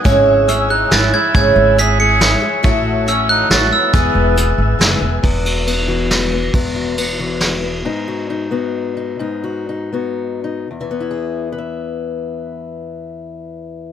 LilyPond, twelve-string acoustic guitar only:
\new Staff \with { instrumentName = "Twelve-string acoustic guitar" } { \time 3/4 \key e \major \tempo 4 = 138 <gis, cis gis e' gis' cis''>4 <gis e' gis' cis''>8 <gis e' gis' cis''>8 <gis e' gis' cis''>8 <gis e' gis' cis''>8 | <gis, cis gis e' gis' cis''>4 <gis e' gis' cis''>8 <gis e' gis' cis''>8 <gis e' gis' cis''>8 <gis e' gis' cis''>8 | <a e' fis' cis''>4 <a e' fis' cis''>4 <a e' fis' cis''>4 | <e gis b gis' b'>4 <gis b gis' b'>4 <gis b gis' b'>8 <b gis' b'>8 |
r2. | r2. | r2. | r2. |
r2. | r2. | }